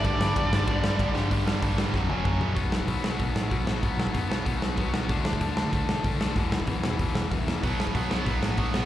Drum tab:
RD |x---x---x---x---|----------------|----------------|----------------|
HH |----------------|o---o-----------|o---o---o---o---|o---o---o---o---|
SD |--o---o---o---o-|--o---o-o-------|--o---o---o---o-|--o---o---o---o-|
T1 |----------------|----------o-----|----------------|----------------|
T2 |----------------|------------o---|----------------|----------------|
FT |----------------|--------------o-|----------------|----------------|
BD |o---o---o---o---|o---o---o---o---|o--oo---o---o---|o--oo---o---o---|

RD |----------------|----------------|----------------|
HH |o---o---o---o---|o---o---o---o---|o---o---o---o---|
SD |--o---o---o---o-|--o---o---o---o-|--o---o---o---o-|
T1 |----------------|----------------|----------------|
T2 |----------------|----------------|----------------|
FT |----------------|----------------|----------------|
BD |o--oo---o---o---|o--oo---o---o---|o--oo---o---o---|